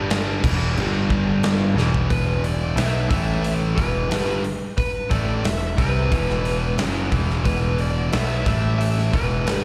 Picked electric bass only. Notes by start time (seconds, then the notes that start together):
Already playing: G1
0.44 E1
0.77 G1
1.75 E1
2.11 E1
2.76 B1
3.11 A1
3.78 E1
4.11 G1
5.11 A1
5.44 E1
5.78 C2
6.12 E1
6.78 F#1
7.12 E1
7.46 E1
8.13 B1
8.46 A1
9.14 E1
9.46 G1